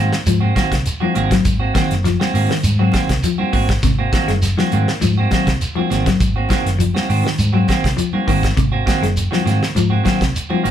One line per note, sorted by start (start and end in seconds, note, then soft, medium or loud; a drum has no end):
0.00 0.14 D#3 medium
0.00 0.15 A#3 medium
0.00 0.15 C4 medium
0.00 0.15 F#4 medium
0.13 snare medium
0.26 0.51 G#2 medium
0.26 0.50 F3 medium
0.26 closed hi-hat medium
0.26 shekere medium
0.40 0.54 A#3 soft
0.40 0.55 C4 soft
0.40 0.55 F#4 medium
0.55 0.74 D#3 medium
0.55 0.74 A#3 medium
0.55 0.75 C4 medium
0.55 0.75 F#4 medium
0.55 muted clean electric guitar stroke medium
0.55 kick medium
0.55 snare medium
0.55 closed hi-hat soft
0.55 high conga medium
0.55 shekere soft
0.72 0.83 C2 medium
0.72 kick medium
0.72 snare medium
0.72 closed hi-hat soft
0.72 low conga medium
0.86 closed hi-hat medium
0.86 shekere medium
1.00 1.24 F3 medium
1.00 1.14 A#3 soft
1.00 1.14 C4 soft
1.00 1.15 F#4 medium
1.00 muted fingered electric bass stroke soft
1.00 high conga medium
1.15 1.40 G#1 medium
1.15 1.34 D#3 medium
1.15 1.34 A#3 medium
1.15 1.34 C4 medium
1.15 1.34 F#4 medium
1.15 closed hi-hat medium
1.15 shekere soft
1.31 1.54 F#3 medium
1.31 kick medium
1.31 snare medium
1.31 closed hi-hat medium
1.44 1.70 G#1 loud
1.44 kick medium
1.44 closed hi-hat medium
1.44 low conga medium
1.44 shekere medium
1.60 1.73 A#3 soft
1.60 1.74 C4 soft
1.60 1.74 F#4 medium
1.74 1.93 D#3 medium
1.74 1.97 D#3 medium
1.74 1.93 A#3 medium
1.74 1.94 C4 medium
1.74 1.94 F#4 medium
1.74 kick medium
1.74 snare medium
1.74 closed hi-hat medium
1.74 high conga medium
1.74 shekere soft
1.91 2.15 F#1 medium
1.91 snare soft
1.91 closed hi-hat medium
2.04 2.27 F3 medium
2.04 snare soft
2.04 closed hi-hat medium
2.04 shekere medium
2.20 2.33 A#3 soft
2.20 2.33 C4 medium
2.20 2.34 F#4 medium
2.20 snare medium
2.20 high conga medium
2.34 2.47 G#2 medium
2.34 2.52 D#3 medium
2.34 2.53 A#3 medium
2.34 2.53 C4 medium
2.34 2.53 F#4 medium
2.34 open hi-hat medium
2.34 shekere soft
2.49 2.72 D#3 medium
2.49 snare medium
2.49 low conga medium
2.63 2.88 G#2 loud
2.63 closed hi-hat medium
2.63 high conga medium
2.63 shekere medium
2.79 3.02 F#3 medium
2.79 2.92 A#3 soft
2.79 2.93 C4 medium
2.79 2.93 F#4 medium
2.92 3.12 D#3 medium
2.92 3.12 A#3 medium
2.92 3.12 C4 medium
2.92 3.12 F#4 medium
2.92 kick medium
2.92 snare medium
2.92 closed hi-hat soft
2.92 high conga medium
2.92 shekere soft
3.08 3.21 C2 medium
3.08 kick medium
3.08 snare medium
3.08 closed hi-hat soft
3.08 low conga medium
3.23 3.46 F3 medium
3.23 closed hi-hat medium
3.23 shekere medium
3.38 3.51 A#3 soft
3.38 3.52 C4 medium
3.38 3.52 F#4 medium
3.38 muted fingered electric bass stroke soft
3.38 high conga medium
3.52 3.78 G#1 medium
3.52 3.71 A#3 medium
3.52 3.71 C4 medium
3.52 3.71 F#4 medium
3.52 muted clean electric guitar stroke medium
3.52 kick medium
3.52 open hi-hat medium
3.52 shekere soft
3.69 kick medium
3.69 snare medium
3.69 closed hi-hat medium
3.83 4.07 G#1 loud
3.83 4.06 C3 medium
3.83 kick medium
3.83 snare soft
3.83 closed hi-hat medium
3.83 low conga medium
3.83 shekere medium
3.99 4.12 A#3 soft
3.99 4.12 C4 soft
3.99 4.12 F#4 medium
4.12 4.31 D#3 medium
4.12 4.31 A#3 medium
4.12 4.31 C4 medium
4.12 4.31 F#4 medium
4.12 kick medium
4.12 snare medium
4.12 closed hi-hat soft
4.12 high conga medium
4.12 shekere soft
4.28 4.52 F#1 medium
4.28 4.51 G#3 medium
4.28 snare soft
4.28 closed hi-hat soft
4.28 high conga medium
4.42 snare soft
4.42 closed hi-hat medium
4.42 shekere medium
4.57 4.80 F3 medium
4.57 4.71 A#3 soft
4.57 4.72 C4 soft
4.57 4.72 F#4 medium
4.57 snare medium
4.57 high conga medium
4.72 4.85 G#2 medium
4.72 4.90 D#3 medium
4.72 4.91 A#3 medium
4.72 4.91 C4 medium
4.72 4.91 F#4 medium
4.72 closed hi-hat soft
4.72 shekere soft
4.88 snare medium
5.01 5.26 G#2 medium
5.01 5.24 F3 medium
5.01 snare soft
5.01 closed hi-hat medium
5.01 high conga medium
5.01 shekere medium
5.18 5.31 A#3 soft
5.18 5.31 C4 medium
5.18 5.31 F#4 medium
5.31 5.50 D#3 medium
5.31 5.54 F#3 medium
5.31 5.50 A#3 medium
5.31 5.50 C4 medium
5.31 5.50 F#4 medium
5.31 kick medium
5.31 snare medium
5.31 closed hi-hat soft
5.31 high conga medium
5.31 shekere soft
5.46 5.58 C2 medium
5.46 kick medium
5.46 snare medium
5.46 closed hi-hat soft
5.46 low conga medium
5.61 closed hi-hat medium
5.61 shekere medium
5.75 5.98 F3 medium
5.75 5.89 A#3 soft
5.75 5.90 C4 soft
5.75 5.90 F#4 medium
5.75 muted fingered electric bass stroke soft
5.75 high conga medium
5.90 6.15 G#1 medium
5.90 6.09 D#3 medium
5.90 6.09 A#3 medium
5.90 6.09 C4 medium
5.90 6.09 F#4 medium
5.90 snare soft
5.90 closed hi-hat soft
5.90 shekere soft
6.06 6.29 F#3 medium
6.06 kick medium
6.06 snare medium
6.06 closed hi-hat medium
6.19 6.44 G#1 loud
6.19 kick medium
6.19 closed hi-hat medium
6.19 low conga medium
6.19 shekere medium
6.36 6.49 A#3 soft
6.36 6.49 C4 soft
6.36 6.50 F#4 medium
6.49 6.68 D#3 medium
6.49 6.72 D#3 medium
6.49 6.68 A#3 medium
6.49 6.68 C4 medium
6.49 6.69 F#4 medium
6.49 kick medium
6.49 snare medium
6.49 closed hi-hat medium
6.49 high conga medium
6.49 shekere soft
6.65 6.89 F#1 medium
6.65 snare soft
6.65 closed hi-hat medium
6.79 7.02 F3 medium
6.79 closed hi-hat medium
6.79 shekere medium
6.94 7.10 A#3 soft
6.94 7.08 C4 medium
6.94 7.09 F#4 medium
6.94 snare medium
6.94 high conga medium
7.09 7.22 G#2 medium
7.09 7.27 D#3 medium
7.09 7.28 C4 medium
7.09 7.28 F#4 medium
7.09 open hi-hat medium
7.09 shekere soft
7.24 7.47 D#3 medium
7.24 snare medium
7.38 7.63 G#2 medium
7.38 closed hi-hat medium
7.38 high conga medium
7.38 shekere medium
7.53 7.76 F#3 medium
7.53 7.67 A#3 soft
7.53 7.67 C4 medium
7.53 7.68 F#4 medium
7.68 7.86 D#3 medium
7.68 7.86 A#3 medium
7.68 7.87 C4 medium
7.68 7.87 F#4 medium
7.68 kick medium
7.68 snare medium
7.68 closed hi-hat soft
7.68 high conga medium
7.68 shekere soft
7.84 7.96 C2 medium
7.84 kick medium
7.84 snare medium
7.84 closed hi-hat soft
7.84 low conga medium
7.97 8.20 F3 medium
7.97 closed hi-hat medium
7.97 shekere medium
8.13 8.26 A#3 soft
8.13 8.27 C4 soft
8.13 8.27 F#4 soft
8.13 muted fingered electric bass stroke soft
8.13 high conga medium
8.27 8.52 G#1 medium
8.27 8.46 D#3 medium
8.27 8.50 D#3 medium
8.27 8.46 A#3 medium
8.27 8.46 C4 medium
8.27 8.46 F#4 medium
8.27 kick medium
8.27 open hi-hat medium
8.27 shekere soft
8.43 kick medium
8.43 snare medium
8.43 closed hi-hat medium
8.57 8.81 G#1 medium
8.57 8.79 C3 medium
8.57 kick medium
8.57 closed hi-hat medium
8.57 low conga medium
8.57 shekere medium
8.72 8.85 A#3 soft
8.72 8.85 C4 soft
8.72 8.86 F#4 medium
8.86 9.05 D#3 medium
8.86 9.05 A#3 medium
8.86 9.05 C4 medium
8.86 9.05 F#4 medium
8.86 kick medium
8.86 snare medium
8.86 closed hi-hat medium
8.86 high conga medium
8.86 shekere soft
9.01 9.26 F#1 medium
9.01 9.25 G#3 medium
9.01 snare soft
9.01 closed hi-hat medium
9.17 closed hi-hat medium
9.17 shekere medium
9.31 9.55 F3 medium
9.31 9.44 A#3 soft
9.31 9.45 C4 soft
9.31 9.44 F#4 medium
9.31 snare medium
9.31 high conga medium
9.44 9.58 G#2 medium
9.44 9.63 D#3 medium
9.44 9.64 A#3 medium
9.44 9.64 C4 medium
9.44 9.64 F#4 medium
9.44 snare soft
9.44 closed hi-hat soft
9.44 shekere soft
9.61 snare medium
9.61 low conga medium
9.75 9.99 G#2 medium
9.75 9.98 F3 medium
9.75 closed hi-hat medium
9.75 shekere medium
9.90 10.03 A#3 soft
9.90 10.03 C4 soft
9.90 10.04 F#4 medium
10.04 10.23 D#3 medium
10.04 10.28 F#3 medium
10.04 10.23 A#3 medium
10.04 10.23 C4 medium
10.04 10.23 F#4 medium
10.04 kick medium
10.04 snare medium
10.04 closed hi-hat soft
10.04 high conga medium
10.04 shekere soft
10.21 10.32 C2 medium
10.21 kick medium
10.21 snare medium
10.21 closed hi-hat soft
10.21 low conga medium
10.36 closed hi-hat medium
10.36 shekere medium
10.50 10.71 F3 medium
10.50 10.63 A#3 soft
10.50 10.63 C4 medium
10.50 10.63 F#4 medium
10.50 muted fingered electric bass stroke soft
10.50 high conga medium
10.63 10.71 G#1 medium
10.63 10.71 D#3 medium
10.63 10.71 A#3 medium
10.63 10.71 C4 medium
10.63 10.71 F#4 medium
10.63 closed hi-hat soft
10.63 shekere soft